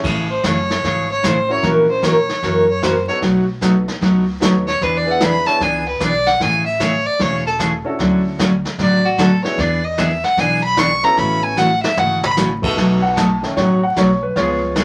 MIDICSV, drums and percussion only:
0, 0, Header, 1, 2, 480
1, 0, Start_track
1, 0, Key_signature, 3, "major"
1, 0, Tempo, 397878
1, 49, Time_signature, 4, 2, 24, 8
1, 17907, End_track
2, 0, Start_track
2, 0, Title_t, "Drums"
2, 48, Note_on_c, 9, 36, 72
2, 49, Note_on_c, 9, 25, 45
2, 49, Note_on_c, 9, 38, 42
2, 49, Note_on_c, 9, 49, 71
2, 168, Note_off_c, 9, 36, 0
2, 170, Note_off_c, 9, 38, 0
2, 170, Note_off_c, 9, 49, 0
2, 526, Note_on_c, 9, 38, 63
2, 526, Note_on_c, 9, 44, 52
2, 528, Note_on_c, 9, 36, 22
2, 647, Note_off_c, 9, 38, 0
2, 647, Note_off_c, 9, 44, 0
2, 648, Note_off_c, 9, 36, 0
2, 848, Note_on_c, 9, 38, 45
2, 968, Note_off_c, 9, 38, 0
2, 1010, Note_on_c, 9, 36, 17
2, 1013, Note_off_c, 9, 25, 0
2, 1013, Note_on_c, 9, 25, 43
2, 1013, Note_on_c, 9, 38, 40
2, 1130, Note_off_c, 9, 36, 0
2, 1133, Note_off_c, 9, 38, 0
2, 1490, Note_on_c, 9, 36, 22
2, 1492, Note_on_c, 9, 38, 67
2, 1492, Note_on_c, 9, 44, 62
2, 1610, Note_off_c, 9, 36, 0
2, 1613, Note_off_c, 9, 38, 0
2, 1613, Note_off_c, 9, 44, 0
2, 1969, Note_on_c, 9, 36, 25
2, 1971, Note_off_c, 9, 25, 0
2, 1971, Note_on_c, 9, 25, 46
2, 1971, Note_on_c, 9, 38, 45
2, 2090, Note_off_c, 9, 36, 0
2, 2091, Note_off_c, 9, 38, 0
2, 2448, Note_on_c, 9, 36, 21
2, 2451, Note_on_c, 9, 38, 74
2, 2451, Note_on_c, 9, 44, 66
2, 2569, Note_off_c, 9, 36, 0
2, 2572, Note_off_c, 9, 38, 0
2, 2572, Note_off_c, 9, 44, 0
2, 2766, Note_on_c, 9, 38, 44
2, 2887, Note_off_c, 9, 38, 0
2, 2927, Note_on_c, 9, 36, 19
2, 2929, Note_off_c, 9, 25, 0
2, 2929, Note_on_c, 9, 25, 43
2, 2929, Note_on_c, 9, 38, 45
2, 3048, Note_off_c, 9, 36, 0
2, 3050, Note_off_c, 9, 38, 0
2, 3405, Note_on_c, 9, 36, 26
2, 3410, Note_on_c, 9, 38, 69
2, 3410, Note_on_c, 9, 44, 56
2, 3526, Note_off_c, 9, 36, 0
2, 3530, Note_off_c, 9, 38, 0
2, 3530, Note_off_c, 9, 44, 0
2, 3884, Note_on_c, 9, 36, 18
2, 3886, Note_off_c, 9, 25, 0
2, 3886, Note_on_c, 9, 25, 42
2, 3886, Note_on_c, 9, 38, 44
2, 4005, Note_off_c, 9, 36, 0
2, 4007, Note_off_c, 9, 38, 0
2, 4364, Note_on_c, 9, 36, 27
2, 4367, Note_on_c, 9, 38, 66
2, 4367, Note_on_c, 9, 44, 60
2, 4485, Note_off_c, 9, 36, 0
2, 4488, Note_off_c, 9, 38, 0
2, 4488, Note_off_c, 9, 44, 0
2, 4682, Note_on_c, 9, 38, 44
2, 4803, Note_off_c, 9, 38, 0
2, 4845, Note_on_c, 9, 36, 18
2, 4849, Note_off_c, 9, 25, 0
2, 4849, Note_on_c, 9, 25, 46
2, 4849, Note_on_c, 9, 38, 41
2, 4965, Note_off_c, 9, 36, 0
2, 4970, Note_off_c, 9, 38, 0
2, 5324, Note_on_c, 9, 36, 25
2, 5330, Note_on_c, 9, 38, 65
2, 5330, Note_on_c, 9, 44, 59
2, 5445, Note_off_c, 9, 36, 0
2, 5451, Note_off_c, 9, 38, 0
2, 5451, Note_off_c, 9, 44, 0
2, 5639, Note_on_c, 9, 38, 43
2, 5760, Note_off_c, 9, 38, 0
2, 5804, Note_on_c, 9, 36, 24
2, 5808, Note_off_c, 9, 25, 0
2, 5808, Note_on_c, 9, 25, 49
2, 5808, Note_on_c, 9, 38, 43
2, 5925, Note_off_c, 9, 36, 0
2, 5929, Note_off_c, 9, 38, 0
2, 6278, Note_on_c, 9, 38, 72
2, 6278, Note_on_c, 9, 44, 60
2, 6282, Note_on_c, 9, 36, 22
2, 6399, Note_off_c, 9, 38, 0
2, 6399, Note_off_c, 9, 44, 0
2, 6402, Note_off_c, 9, 36, 0
2, 6594, Note_on_c, 9, 38, 45
2, 6714, Note_off_c, 9, 38, 0
2, 6762, Note_on_c, 9, 36, 21
2, 6765, Note_off_c, 9, 25, 0
2, 6765, Note_on_c, 9, 25, 40
2, 6765, Note_on_c, 9, 38, 47
2, 6882, Note_off_c, 9, 36, 0
2, 6886, Note_off_c, 9, 38, 0
2, 7241, Note_on_c, 9, 36, 22
2, 7243, Note_on_c, 9, 38, 65
2, 7243, Note_on_c, 9, 44, 64
2, 7361, Note_off_c, 9, 36, 0
2, 7364, Note_off_c, 9, 38, 0
2, 7364, Note_off_c, 9, 44, 0
2, 7559, Note_on_c, 9, 38, 44
2, 7679, Note_off_c, 9, 38, 0
2, 7722, Note_on_c, 9, 36, 26
2, 7725, Note_off_c, 9, 25, 0
2, 7725, Note_on_c, 9, 25, 43
2, 7725, Note_on_c, 9, 38, 45
2, 7843, Note_off_c, 9, 36, 0
2, 7845, Note_off_c, 9, 38, 0
2, 8201, Note_on_c, 9, 36, 23
2, 8203, Note_on_c, 9, 38, 68
2, 8203, Note_on_c, 9, 44, 64
2, 8322, Note_off_c, 9, 36, 0
2, 8323, Note_off_c, 9, 38, 0
2, 8323, Note_off_c, 9, 44, 0
2, 8681, Note_on_c, 9, 36, 21
2, 8682, Note_off_c, 9, 25, 0
2, 8682, Note_on_c, 9, 25, 45
2, 8682, Note_on_c, 9, 38, 41
2, 8801, Note_off_c, 9, 36, 0
2, 8802, Note_off_c, 9, 38, 0
2, 9161, Note_on_c, 9, 36, 25
2, 9165, Note_on_c, 9, 38, 77
2, 9165, Note_on_c, 9, 44, 59
2, 9281, Note_off_c, 9, 36, 0
2, 9286, Note_off_c, 9, 38, 0
2, 9286, Note_off_c, 9, 44, 0
2, 9640, Note_on_c, 9, 36, 20
2, 9643, Note_off_c, 9, 25, 0
2, 9643, Note_on_c, 9, 25, 43
2, 9643, Note_on_c, 9, 38, 45
2, 9761, Note_off_c, 9, 36, 0
2, 9764, Note_off_c, 9, 38, 0
2, 10120, Note_on_c, 9, 36, 23
2, 10125, Note_on_c, 9, 38, 72
2, 10125, Note_on_c, 9, 44, 67
2, 10241, Note_off_c, 9, 36, 0
2, 10246, Note_off_c, 9, 38, 0
2, 10246, Note_off_c, 9, 44, 0
2, 10437, Note_on_c, 9, 38, 46
2, 10557, Note_off_c, 9, 38, 0
2, 10598, Note_on_c, 9, 36, 23
2, 10600, Note_off_c, 9, 25, 0
2, 10600, Note_on_c, 9, 25, 47
2, 10600, Note_on_c, 9, 38, 45
2, 10719, Note_off_c, 9, 36, 0
2, 10721, Note_off_c, 9, 38, 0
2, 11078, Note_on_c, 9, 36, 25
2, 11081, Note_on_c, 9, 38, 73
2, 11081, Note_on_c, 9, 44, 62
2, 11198, Note_off_c, 9, 36, 0
2, 11201, Note_off_c, 9, 38, 0
2, 11201, Note_off_c, 9, 44, 0
2, 11395, Note_on_c, 9, 38, 42
2, 11515, Note_off_c, 9, 38, 0
2, 11556, Note_on_c, 9, 36, 27
2, 11562, Note_off_c, 9, 25, 0
2, 11562, Note_on_c, 9, 25, 47
2, 11562, Note_on_c, 9, 38, 47
2, 11677, Note_off_c, 9, 36, 0
2, 11682, Note_off_c, 9, 38, 0
2, 12036, Note_on_c, 9, 36, 22
2, 12037, Note_on_c, 9, 38, 74
2, 12037, Note_on_c, 9, 44, 56
2, 12156, Note_off_c, 9, 36, 0
2, 12158, Note_off_c, 9, 38, 0
2, 12158, Note_off_c, 9, 44, 0
2, 12348, Note_on_c, 9, 38, 46
2, 12469, Note_off_c, 9, 38, 0
2, 12513, Note_on_c, 9, 36, 17
2, 12514, Note_off_c, 9, 25, 0
2, 12514, Note_on_c, 9, 25, 48
2, 12514, Note_on_c, 9, 38, 44
2, 12634, Note_off_c, 9, 36, 0
2, 12634, Note_off_c, 9, 38, 0
2, 12995, Note_on_c, 9, 36, 20
2, 12995, Note_on_c, 9, 38, 74
2, 12995, Note_on_c, 9, 44, 59
2, 13115, Note_off_c, 9, 36, 0
2, 13116, Note_off_c, 9, 38, 0
2, 13116, Note_off_c, 9, 44, 0
2, 13311, Note_on_c, 9, 38, 45
2, 13432, Note_off_c, 9, 38, 0
2, 13477, Note_on_c, 9, 36, 23
2, 13478, Note_off_c, 9, 25, 0
2, 13478, Note_on_c, 9, 25, 52
2, 13478, Note_on_c, 9, 38, 45
2, 13597, Note_off_c, 9, 36, 0
2, 13599, Note_off_c, 9, 38, 0
2, 13957, Note_on_c, 9, 38, 48
2, 13957, Note_on_c, 9, 44, 62
2, 14078, Note_off_c, 9, 38, 0
2, 14078, Note_off_c, 9, 44, 0
2, 14283, Note_on_c, 9, 38, 82
2, 14404, Note_off_c, 9, 38, 0
2, 14443, Note_on_c, 9, 47, 61
2, 14564, Note_off_c, 9, 47, 0
2, 14760, Note_on_c, 9, 47, 92
2, 14880, Note_off_c, 9, 47, 0
2, 14922, Note_on_c, 9, 38, 62
2, 14922, Note_on_c, 9, 44, 58
2, 15043, Note_off_c, 9, 38, 0
2, 15043, Note_off_c, 9, 44, 0
2, 15238, Note_on_c, 9, 36, 83
2, 15244, Note_on_c, 9, 49, 79
2, 15359, Note_off_c, 9, 36, 0
2, 15364, Note_off_c, 9, 49, 0
2, 15404, Note_on_c, 9, 36, 21
2, 15409, Note_off_c, 9, 25, 0
2, 15409, Note_on_c, 9, 25, 51
2, 15409, Note_on_c, 9, 38, 40
2, 15525, Note_off_c, 9, 36, 0
2, 15529, Note_off_c, 9, 38, 0
2, 15884, Note_on_c, 9, 36, 22
2, 15887, Note_on_c, 9, 38, 69
2, 15887, Note_on_c, 9, 44, 52
2, 16005, Note_off_c, 9, 36, 0
2, 16008, Note_off_c, 9, 38, 0
2, 16008, Note_off_c, 9, 44, 0
2, 16206, Note_on_c, 9, 38, 45
2, 16327, Note_off_c, 9, 38, 0
2, 16365, Note_on_c, 9, 36, 23
2, 16366, Note_off_c, 9, 25, 0
2, 16366, Note_on_c, 9, 25, 42
2, 16366, Note_on_c, 9, 38, 43
2, 16485, Note_off_c, 9, 36, 0
2, 16487, Note_off_c, 9, 38, 0
2, 16844, Note_on_c, 9, 36, 27
2, 16846, Note_on_c, 9, 38, 69
2, 16846, Note_on_c, 9, 44, 52
2, 16965, Note_off_c, 9, 36, 0
2, 16966, Note_off_c, 9, 38, 0
2, 16966, Note_off_c, 9, 44, 0
2, 17322, Note_off_c, 9, 25, 0
2, 17322, Note_on_c, 9, 25, 45
2, 17322, Note_on_c, 9, 38, 42
2, 17324, Note_on_c, 9, 36, 22
2, 17443, Note_off_c, 9, 38, 0
2, 17445, Note_off_c, 9, 36, 0
2, 17802, Note_on_c, 9, 38, 69
2, 17802, Note_on_c, 9, 44, 61
2, 17805, Note_on_c, 9, 36, 26
2, 17907, Note_off_c, 9, 25, 0
2, 17907, Note_off_c, 9, 36, 0
2, 17907, Note_off_c, 9, 38, 0
2, 17907, Note_off_c, 9, 44, 0
2, 17907, End_track
0, 0, End_of_file